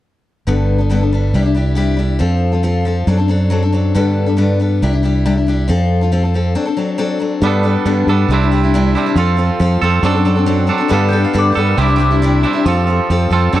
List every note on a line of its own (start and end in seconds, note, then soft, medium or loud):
0.47 1.32 G1 medium
0.47 0.79 G2 medium
0.47 0.79 D3 medium
0.47 0.80 G3 medium
0.47 0.79 B3 medium
0.47 0.78 D4 medium
0.47 0.77 A4 medium
0.78 0.89 G3 soft
0.78 0.90 B3 soft
0.78 0.90 D4 soft
0.78 0.89 A4 soft
0.89 1.01 G2 medium
0.89 1.01 D3 medium
0.89 1.01 G3 medium
0.89 1.01 B3 medium
0.89 1.01 D4 medium
0.89 1.00 A4 medium
1.01 1.11 G3 soft
1.01 1.11 B3 soft
1.01 1.12 D4 soft
1.01 1.12 A4 soft
1.12 1.33 G3 medium
1.12 1.34 B3 medium
1.12 1.34 D4 medium
1.12 1.35 A4 medium
1.34 2.19 C2 medium
1.34 1.45 C3 medium
1.34 1.45 G3 medium
1.34 1.44 D4 medium
1.34 1.43 E4 medium
1.34 1.42 G4 medium
1.43 1.54 D4 soft
1.43 1.55 E4 soft
1.43 1.54 G4 medium
1.55 1.75 G3 medium
1.55 1.75 D4 medium
1.55 1.76 E4 medium
1.55 1.76 G4 medium
1.75 1.98 C3 medium
1.75 1.96 G3 medium
1.75 1.97 D4 medium
1.75 1.98 E4 medium
1.75 1.99 G4 medium
1.97 2.18 G3 medium
1.97 2.19 D4 medium
1.97 2.20 E4 medium
1.97 2.20 G4 medium
2.19 3.06 F2 medium
2.19 2.52 F3 medium
2.19 2.53 C4 medium
2.19 2.52 F4 medium
2.19 2.51 A4 medium
2.52 2.62 C4 soft
2.52 2.63 F4 soft
2.52 2.63 A4 soft
2.63 2.84 F3 medium
2.63 2.85 C4 medium
2.63 2.85 F4 medium
2.63 2.86 A4 medium
2.85 3.07 F3 medium
2.85 3.07 C4 medium
2.85 3.08 F4 medium
2.85 3.08 A4 medium
3.07 3.93 F#2 medium
3.07 3.18 F#3 medium
3.07 3.18 C4 medium
3.07 3.17 D4 medium
3.07 3.16 A4 medium
3.17 3.28 C4 soft
3.17 3.29 D4 soft
3.17 3.29 A4 medium
3.28 3.49 F#3 medium
3.28 3.50 C4 medium
3.28 3.50 D4 medium
3.28 3.51 A4 medium
3.50 3.62 F#3 medium
3.50 3.62 C4 medium
3.50 3.62 D4 medium
3.50 3.61 A4 medium
3.62 3.72 C4 soft
3.62 3.73 D4 soft
3.62 3.73 A4 medium
3.72 3.95 F#3 medium
3.72 3.95 C4 medium
3.72 3.95 D4 medium
3.72 3.95 A4 medium
3.95 4.27 G2 medium
3.95 4.81 G2 medium
3.95 4.28 D3 medium
3.95 4.28 G3 medium
3.95 4.27 B3 medium
3.95 4.26 D4 medium
3.95 4.25 A4 medium
4.26 4.37 G3 soft
4.26 4.37 B3 soft
4.26 4.37 D4 soft
4.26 4.37 A4 medium
4.37 4.59 G2 medium
4.37 4.60 D3 medium
4.37 4.58 G3 medium
4.37 4.59 B3 medium
4.37 4.60 D4 medium
4.37 4.60 A4 medium
4.60 4.82 G3 medium
4.60 4.82 B3 medium
4.60 4.82 D4 medium
4.60 4.83 A4 medium
4.82 5.68 C2 medium
4.82 4.93 C3 medium
4.82 4.93 G3 medium
4.82 4.93 D4 medium
4.82 4.93 E4 medium
4.82 4.92 G4 medium
4.93 5.03 D4 soft
4.93 5.03 E4 soft
4.93 5.04 G4 medium
5.03 5.24 G3 medium
5.03 5.24 D4 medium
5.03 5.25 E4 medium
5.03 5.26 G4 medium
5.25 5.37 C3 medium
5.25 5.37 G3 medium
5.25 5.37 D4 medium
5.25 5.36 E4 medium
5.25 5.34 G4 medium
5.35 5.47 D4 soft
5.35 5.48 E4 soft
5.35 5.47 G4 soft
5.47 5.67 G3 soft
5.47 5.68 D4 medium
5.47 5.69 E4 medium
5.47 5.69 G4 medium
5.68 6.55 F2 medium
5.68 6.01 F3 medium
5.68 6.02 C4 medium
5.68 6.01 F4 medium
5.68 6.00 A4 medium
6.01 6.11 C4 soft
6.01 6.11 F4 soft
6.01 6.12 A4 soft
6.12 6.23 F3 medium
6.12 6.24 C4 medium
6.12 6.23 F4 medium
6.12 6.22 A4 medium
6.23 6.34 C4 soft
6.23 6.34 F4 soft
6.23 6.34 A4 soft
6.34 6.55 F3 medium
6.34 6.54 C4 medium
6.34 6.55 F4 medium
6.34 6.55 A4 medium
6.55 6.67 F#3 medium
6.55 6.67 C4 medium
6.55 6.66 D4 medium
6.55 6.64 A4 medium
6.65 6.76 C4 soft
6.65 6.77 D4 soft
6.65 6.77 A4 medium
6.77 6.97 F#3 medium
6.77 6.97 C4 medium
6.77 6.98 D4 medium
6.77 6.98 A4 medium
6.98 7.18 F#3 medium
6.98 7.19 C4 medium
6.98 7.20 D4 medium
6.98 7.20 A4 medium
7.20 7.42 F#3 medium
7.20 7.42 C4 medium
7.20 7.42 D4 medium
7.20 7.42 A4 medium
7.41 7.64 G2 medium
7.41 7.75 G2 medium
7.41 7.64 D3 medium
7.41 7.62 G3 medium
7.41 7.63 B3 medium
7.41 7.63 D4 medium
7.41 7.64 A4 medium
7.47 8.08 A4 medium
7.63 7.85 G3 medium
7.63 7.85 B3 medium
7.63 7.85 D4 medium
7.63 7.86 A4 medium
7.85 8.08 G2 medium
7.85 8.03 G2 medium
7.85 8.08 D3 medium
7.85 8.07 G3 medium
7.85 8.08 B3 medium
7.85 8.09 D4 medium
7.85 8.09 A4 medium
8.07 8.24 G2 medium
8.07 8.29 G3 medium
8.07 8.30 B3 medium
8.07 8.29 D4 medium
8.07 8.31 A4 medium
8.12 8.31 G3 medium
8.28 8.95 C2 medium
8.28 8.41 C3 medium
8.28 8.42 G3 medium
8.28 8.42 D4 medium
8.28 8.42 E4 medium
8.28 8.40 G4 medium
8.33 8.96 C4 medium
8.41 8.51 D4 soft
8.41 8.52 E4 soft
8.41 8.52 G4 soft
8.52 8.63 G3 medium
8.52 8.63 D4 medium
8.52 8.63 E4 medium
8.52 8.62 G4 medium
8.63 8.74 D4 soft
8.63 8.74 E4 medium
8.63 8.74 G4 medium
8.74 8.96 C3 medium
8.74 8.94 G3 medium
8.74 8.95 D4 medium
8.74 8.96 E4 medium
8.74 8.97 G4 medium
8.95 9.18 C3 medium
8.95 9.06 G3 medium
8.95 9.16 C4 medium
8.95 9.07 D4 medium
8.95 9.06 E4 medium
8.95 9.05 G4 medium
9.06 9.17 D4 soft
9.06 9.17 E4 medium
9.06 9.17 G4 medium
9.15 9.49 F2 medium
9.15 9.36 F3 medium
9.15 9.37 C4 medium
9.15 9.38 F4 medium
9.15 9.39 A4 medium
9.37 9.58 F3 medium
9.37 9.59 C4 medium
9.37 9.60 F4 medium
9.37 9.61 A4 medium
9.60 9.77 F2 loud
9.60 9.80 F3 medium
9.60 9.82 C4 medium
9.60 9.82 F4 medium
9.60 9.83 A4 medium
9.82 9.99 F2 medium
9.82 10.03 F3 medium
9.82 10.02 C4 medium
9.82 10.04 F4 medium
9.82 10.04 A4 medium
10.03 10.69 F#2 loud
10.03 10.15 F#3 medium
10.03 10.15 C4 medium
10.03 10.15 D4 medium
10.03 10.13 A4 medium
10.15 10.25 C4 soft
10.15 10.26 D4 soft
10.15 10.26 A4 soft
10.25 10.37 F#3 medium
10.25 10.37 C4 medium
10.25 10.36 D4 medium
10.25 10.34 A4 medium
10.36 10.46 C4 soft
10.36 10.46 D4 soft
10.36 10.47 A4 soft
10.46 10.66 F#3 medium
10.46 10.66 C4 medium
10.46 10.67 D4 medium
10.46 10.68 A4 medium
10.67 10.79 F#3 medium
10.67 10.80 C4 medium
10.67 10.78 D4 medium
10.67 10.77 A4 medium
10.72 10.90 F#3 medium
10.78 10.90 C4 medium
10.78 10.89 D4 medium
10.78 10.89 A4 medium
10.88 11.12 G2 medium
10.88 11.24 G2 medium
10.88 11.12 D3 medium
10.88 11.09 G3 medium
10.88 11.10 B3 medium
10.88 11.11 D4 medium
10.88 11.12 A4 loud
10.93 11.07 F5 medium
11.09 11.33 G3 medium
11.09 11.33 B3 medium
11.09 11.34 D4 medium
11.09 11.22 G5 medium
11.13 11.34 A4 medium
11.24 11.37 F5 medium
11.33 11.56 G2 medium
11.33 11.51 G2 loud
11.33 11.57 D3 medium
11.33 11.53 G3 medium
11.33 11.54 B3 medium
11.33 11.55 D4 medium
11.33 11.56 A4 medium
11.38 11.51 D5 medium
11.52 11.77 G3 medium
11.52 11.78 B3 medium
11.52 11.65 G4 medium
11.57 11.73 G2 medium
11.57 11.77 G3 medium
11.57 11.77 D4 medium
11.57 11.78 A4 medium
11.67 11.80 A#4 medium
11.77 12.44 C2 loud
11.77 11.89 C3 medium
11.77 11.90 G3 medium
11.77 12.43 C4 medium
11.77 11.89 D4 medium
11.77 11.88 E4 medium
11.77 11.87 G4 medium
11.81 11.94 G4 medium
11.88 11.98 D4 soft
11.88 11.99 E4 soft
11.88 12.00 G4 medium
11.96 12.11 G3 medium
11.96 12.11 D4 medium
11.96 13.22 G4 medium
12.00 12.10 E4 medium
12.00 12.10 G4 medium
12.11 12.22 D4 soft
12.11 12.22 E4 medium
12.11 12.22 G4 medium
12.22 12.44 C3 medium
12.22 12.42 G3 medium
12.22 12.43 D4 medium
12.22 12.44 E4 medium
12.22 12.44 G4 loud
12.43 12.55 G3 medium
12.43 12.65 C4 medium
12.43 12.55 D4 medium
12.43 12.54 E4 medium
12.43 12.52 G4 medium
12.47 12.66 C3 medium
12.53 12.66 D4 soft
12.53 12.66 E4 medium
12.53 12.65 G4 medium
12.66 12.99 F2 loud
12.66 12.86 F3 medium
12.66 12.87 C4 medium
12.66 12.88 F4 medium
12.66 12.89 A4 medium
12.87 13.09 F3 medium
12.87 13.10 C4 medium
12.87 13.10 F4 medium
12.87 13.11 A4 medium
13.10 13.26 F2 loud
13.10 13.29 F3 medium
13.10 13.30 C4 medium
13.10 13.31 F4 medium
13.10 13.32 A4 medium
13.30 13.48 F2 medium
13.30 13.52 F3 medium
13.30 13.52 C4 medium
13.30 13.53 F4 medium
13.30 13.53 A4 medium
13.36 13.53 F3 medium
13.53 13.60 F#2 loud
13.53 13.60 F#3 medium
13.53 13.60 C4 medium
13.53 13.60 D4 medium
13.53 13.60 A4 medium